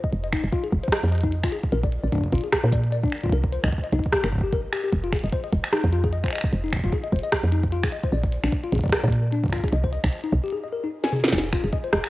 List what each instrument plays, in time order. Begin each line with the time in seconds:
0.04 tine electric piano D#5, kick, closed hi-hat
0.12 fm bass F1, closed hi-hat
0.24 tine electric piano D#5, closed hi-hat
0.32 tine electric piano D#4, finger snap, kick, closed hi-hat
0.44 fm bass F1, closed hi-hat
0.52 tine electric piano F4, kick, closed hi-hat
0.64 tine electric piano G#4, closed hi-hat
0.73 fm bass F1, kick
0.84 tine electric piano C5, closed hi-hat
0.88 kick
0.92 tine electric piano D#5, finger snap, cross-stick, closed hi-hat
1.04 fm bass F2, closed hi-hat
1.06 closed hi-hat
1.10 tine electric piano D#5, closed hi-hat
1.13 closed hi-hat
1.15 closed hi-hat
1.18 closed hi-hat
1.21 tine electric piano D#4, kick, closed hi-hat
1.24 closed hi-hat
1.33 closed hi-hat
1.44 tine electric piano F4, finger snap, kick, closed hi-hat
1.52 tine electric piano G#4, closed hi-hat
1.64 kick, closed hi-hat
1.72 fm bass A#1, tine electric piano A#4, closed hi-hat
1.84 tine electric piano D5, kick, closed hi-hat
1.92 closed hi-hat
2.04 fm bass A#1, tine electric piano D5
2.12 tine electric piano D4, kick, closed hi-hat
2.15 kick
2.18 kick
2.21 kick, closed hi-hat
2.24 kick
2.26 kick
2.28 kick
2.30 tine electric piano F4, kick, closed hi-hat
2.33 fm bass A#1, kick, closed hi-hat
2.38 closed hi-hat
2.41 tine electric piano G#4, closed hi-hat
2.44 closed hi-hat
2.52 finger snap, kick, cross-stick, closed hi-hat
2.64 fm bass A#2, tine electric piano A#4, closed hi-hat
2.73 tine electric piano D5, kick, closed hi-hat
2.84 closed hi-hat
2.92 tine electric piano D5, closed hi-hat
3.04 tine electric piano D4, kick, closed hi-hat
3.06 closed hi-hat
3.08 closed hi-hat
3.10 finger snap, closed hi-hat
3.12 closed hi-hat
3.15 closed hi-hat
3.18 closed hi-hat
3.21 tine electric piano F4, kick, closed hi-hat
3.24 kick, closed hi-hat
3.30 fm bass C2, tine electric piano A#4, kick, closed hi-hat
3.44 kick, closed hi-hat
3.52 tine electric piano C5, closed hi-hat
3.64 fm bass C2, tine electric piano D#5, finger snap, kick, closed hi-hat
3.66 kick, closed hi-hat
3.70 closed hi-hat
3.73 kick, closed hi-hat
3.78 kick
3.84 tine electric piano D#5, closed hi-hat
3.93 fm bass C2, tine electric piano D#4, kick, closed hi-hat
3.99 kick
4.04 kick, closed hi-hat
4.12 tine electric piano G4, kick, cross-stick
4.24 fm bass G1, tine electric piano A#4, finger snap, closed hi-hat
4.33 kick
4.35 kick
4.38 kick
4.41 tine electric piano G4, kick
4.53 tine electric piano A#4, kick, closed hi-hat
4.73 tine electric piano G4, finger snap, closed hi-hat
4.84 tine electric piano G4, closed hi-hat
4.92 fm bass F1, kick, closed hi-hat
5.04 tine electric piano F4, closed hi-hat
5.12 tine electric piano G#4, finger snap, kick, closed hi-hat
5.16 closed hi-hat
5.19 closed hi-hat
5.24 fm bass F1, tine electric piano D#5, closed hi-hat
5.26 closed hi-hat
5.30 closed hi-hat
5.32 tine electric piano C5, kick, closed hi-hat
5.44 tine electric piano D#5, closed hi-hat
5.52 fm bass F1, kick, closed hi-hat
5.64 finger snap, closed hi-hat
5.72 tine electric piano D#4, cross-stick, closed hi-hat
5.84 fm bass F2, kick, closed hi-hat
5.92 tine electric piano F4, closed hi-hat
6.04 tine electric piano G#4, kick, closed hi-hat
6.12 tine electric piano D#5, closed hi-hat
6.24 tine electric piano C5, finger snap, kick, closed hi-hat
6.26 finger snap
6.28 finger snap
6.30 finger snap
6.32 tine electric piano D#5, finger snap, closed hi-hat
6.35 finger snap
6.38 finger snap
6.41 finger snap, kick, closed hi-hat
6.52 fm bass F1, closed hi-hat
6.64 tine electric piano D#4, closed hi-hat
6.66 closed hi-hat
6.68 closed hi-hat
6.70 finger snap, closed hi-hat
6.72 kick, closed hi-hat
6.76 kick
6.79 kick
6.84 fm bass F1, tine electric piano F4, kick, closed hi-hat
6.86 kick
6.90 tine electric piano G#4, kick, closed hi-hat
6.92 kick
7.04 tine electric piano D#5, closed hi-hat
7.12 fm bass F1, tine electric piano C5, kick, closed hi-hat
7.16 closed hi-hat
7.19 closed hi-hat
7.24 tine electric piano D#5, closed hi-hat
7.32 finger snap, kick, cross-stick, closed hi-hat
7.44 fm bass F2, closed hi-hat
7.52 tine electric piano D#4, closed hi-hat
7.64 kick, closed hi-hat
7.72 tine electric piano F4, closed hi-hat
7.84 tine electric piano G#4, finger snap, kick, closed hi-hat
7.92 tine electric piano D#5, closed hi-hat
8.04 tine electric piano C5, kick, closed hi-hat
8.12 fm bass A#1, tine electric piano D5
8.24 kick, closed hi-hat
8.33 closed hi-hat
8.44 fm bass A#1, tine electric piano D4, finger snap, closed hi-hat
8.53 kick, closed hi-hat
8.64 tine electric piano F4, closed hi-hat
8.72 fm bass A#1, tine electric piano G#4, kick, closed hi-hat
8.75 kick, closed hi-hat
8.78 kick, closed hi-hat
8.81 closed hi-hat
8.84 tine electric piano D5, kick, closed hi-hat
8.86 kick, closed hi-hat
8.88 kick, closed hi-hat
8.90 finger snap, kick, cross-stick, closed hi-hat
8.93 tine electric piano A#4, closed hi-hat
8.96 closed hi-hat
8.99 closed hi-hat
9.04 fm bass A#2, tine electric piano D5, closed hi-hat
9.08 kick
9.13 closed hi-hat
9.33 tine electric piano D4, closed hi-hat
9.44 kick, closed hi-hat
9.46 kick, closed hi-hat
9.48 kick, closed hi-hat
9.50 tine electric piano F4, finger snap, kick, closed hi-hat
9.53 closed hi-hat
9.55 kick, closed hi-hat
9.58 kick, closed hi-hat
9.61 tine electric piano G#4, kick, closed hi-hat
9.64 closed hi-hat
9.68 closed hi-hat
9.72 fm bass C2, tine electric piano D#5, closed hi-hat
9.84 tine electric piano C5, kick
9.93 tine electric piano D#5, closed hi-hat
10.04 fm bass C2, finger snap, kick, closed hi-hat
10.06 closed hi-hat
10.08 closed hi-hat
10.10 closed hi-hat
10.13 closed hi-hat
10.15 closed hi-hat
10.18 closed hi-hat
10.21 closed hi-hat
10.24 tine electric piano D#4, closed hi-hat
10.32 fm bass C2, kick
10.44 tine electric piano G4, closed hi-hat
10.46 closed hi-hat
10.48 closed hi-hat
10.50 tine electric piano G#4, closed hi-hat
10.64 tine electric piano D#5
10.73 tine electric piano A#4
10.84 tine electric piano D#4
11.04 tine electric piano G#5, snare
11.12 tine electric piano G#4, mid tom
11.24 snare
11.28 snare
11.32 fm bass F1, tine electric piano D#4, kick, snare, closed hi-hat
11.38 snare
11.44 closed hi-hat
11.53 tine electric piano F4, finger snap, kick, closed hi-hat
11.64 fm bass F1, tine electric piano G#4, closed hi-hat
11.72 tine electric piano D#5, kick, closed hi-hat
11.84 tine electric piano C5, closed hi-hat
11.92 fm bass F1, tine electric piano D#5, kick, cross-stick, closed hi-hat
12.04 finger snap, closed hi-hat